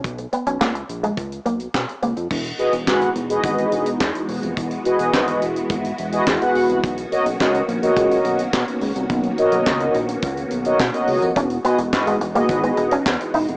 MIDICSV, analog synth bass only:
0, 0, Header, 1, 2, 480
1, 0, Start_track
1, 0, Tempo, 566038
1, 36, Time_signature, 4, 2, 24, 8
1, 11506, End_track
2, 0, Start_track
2, 0, Title_t, "Analog synth bass"
2, 0, Program_c, 0, 38
2, 36, Note_on_c, 0, 35, 106
2, 226, Note_off_c, 0, 35, 0
2, 395, Note_on_c, 0, 35, 98
2, 491, Note_off_c, 0, 35, 0
2, 516, Note_on_c, 0, 37, 95
2, 706, Note_off_c, 0, 37, 0
2, 757, Note_on_c, 0, 34, 90
2, 947, Note_off_c, 0, 34, 0
2, 994, Note_on_c, 0, 37, 100
2, 1185, Note_off_c, 0, 37, 0
2, 1235, Note_on_c, 0, 35, 97
2, 1425, Note_off_c, 0, 35, 0
2, 1478, Note_on_c, 0, 47, 101
2, 1572, Note_off_c, 0, 47, 0
2, 1716, Note_on_c, 0, 37, 96
2, 1811, Note_off_c, 0, 37, 0
2, 1836, Note_on_c, 0, 41, 80
2, 1931, Note_off_c, 0, 41, 0
2, 1957, Note_on_c, 0, 28, 115
2, 2147, Note_off_c, 0, 28, 0
2, 2316, Note_on_c, 0, 28, 102
2, 2437, Note_on_c, 0, 32, 106
2, 2450, Note_off_c, 0, 28, 0
2, 2627, Note_off_c, 0, 32, 0
2, 2677, Note_on_c, 0, 28, 100
2, 2867, Note_off_c, 0, 28, 0
2, 2915, Note_on_c, 0, 32, 114
2, 3105, Note_off_c, 0, 32, 0
2, 3155, Note_on_c, 0, 28, 93
2, 3346, Note_off_c, 0, 28, 0
2, 3397, Note_on_c, 0, 40, 115
2, 3491, Note_off_c, 0, 40, 0
2, 3636, Note_on_c, 0, 28, 100
2, 3731, Note_off_c, 0, 28, 0
2, 3757, Note_on_c, 0, 29, 97
2, 3851, Note_off_c, 0, 29, 0
2, 3876, Note_on_c, 0, 28, 104
2, 4066, Note_off_c, 0, 28, 0
2, 4237, Note_on_c, 0, 28, 101
2, 4331, Note_off_c, 0, 28, 0
2, 4356, Note_on_c, 0, 32, 94
2, 4546, Note_off_c, 0, 32, 0
2, 4596, Note_on_c, 0, 28, 102
2, 4786, Note_off_c, 0, 28, 0
2, 4834, Note_on_c, 0, 32, 102
2, 5025, Note_off_c, 0, 32, 0
2, 5076, Note_on_c, 0, 28, 91
2, 5266, Note_off_c, 0, 28, 0
2, 5316, Note_on_c, 0, 40, 100
2, 5411, Note_off_c, 0, 40, 0
2, 5555, Note_on_c, 0, 28, 90
2, 5650, Note_off_c, 0, 28, 0
2, 5673, Note_on_c, 0, 36, 88
2, 5769, Note_off_c, 0, 36, 0
2, 5795, Note_on_c, 0, 35, 110
2, 5986, Note_off_c, 0, 35, 0
2, 6155, Note_on_c, 0, 35, 98
2, 6250, Note_off_c, 0, 35, 0
2, 6276, Note_on_c, 0, 37, 107
2, 6466, Note_off_c, 0, 37, 0
2, 6515, Note_on_c, 0, 34, 96
2, 6705, Note_off_c, 0, 34, 0
2, 6754, Note_on_c, 0, 37, 96
2, 6945, Note_off_c, 0, 37, 0
2, 6994, Note_on_c, 0, 35, 86
2, 7185, Note_off_c, 0, 35, 0
2, 7236, Note_on_c, 0, 47, 109
2, 7331, Note_off_c, 0, 47, 0
2, 7474, Note_on_c, 0, 37, 97
2, 7569, Note_off_c, 0, 37, 0
2, 7596, Note_on_c, 0, 36, 86
2, 7691, Note_off_c, 0, 36, 0
2, 7715, Note_on_c, 0, 35, 110
2, 7905, Note_off_c, 0, 35, 0
2, 8075, Note_on_c, 0, 35, 105
2, 8171, Note_off_c, 0, 35, 0
2, 8194, Note_on_c, 0, 37, 105
2, 8385, Note_off_c, 0, 37, 0
2, 8436, Note_on_c, 0, 34, 107
2, 8626, Note_off_c, 0, 34, 0
2, 8673, Note_on_c, 0, 37, 102
2, 8864, Note_off_c, 0, 37, 0
2, 8916, Note_on_c, 0, 35, 90
2, 9106, Note_off_c, 0, 35, 0
2, 9155, Note_on_c, 0, 47, 102
2, 9250, Note_off_c, 0, 47, 0
2, 9396, Note_on_c, 0, 37, 94
2, 9491, Note_off_c, 0, 37, 0
2, 9517, Note_on_c, 0, 41, 83
2, 9612, Note_off_c, 0, 41, 0
2, 9635, Note_on_c, 0, 28, 114
2, 9825, Note_off_c, 0, 28, 0
2, 9994, Note_on_c, 0, 28, 109
2, 10115, Note_on_c, 0, 32, 104
2, 10128, Note_off_c, 0, 28, 0
2, 10305, Note_off_c, 0, 32, 0
2, 10355, Note_on_c, 0, 28, 104
2, 10546, Note_off_c, 0, 28, 0
2, 10592, Note_on_c, 0, 32, 109
2, 10784, Note_off_c, 0, 32, 0
2, 10836, Note_on_c, 0, 28, 87
2, 11026, Note_off_c, 0, 28, 0
2, 11075, Note_on_c, 0, 40, 117
2, 11170, Note_off_c, 0, 40, 0
2, 11315, Note_on_c, 0, 28, 90
2, 11410, Note_off_c, 0, 28, 0
2, 11435, Note_on_c, 0, 29, 93
2, 11506, Note_off_c, 0, 29, 0
2, 11506, End_track
0, 0, End_of_file